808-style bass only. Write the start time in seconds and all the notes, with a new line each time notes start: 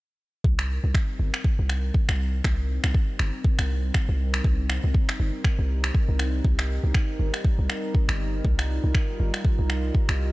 0.44 C2
0.84 C2
1.19 G1
1.59 C2
2.09 C2
2.44 C2
2.84 C2
3.20 G1
3.59 C2
4.09 C2
4.44 C2
4.84 C2
5.20 G1
5.59 C2
6.09 C2
6.44 C2
6.84 C2
7.19 G1
7.59 C2
8.09 G1
8.45 C2
8.84 C2
9.20 G1
9.59 C2
10.09 C2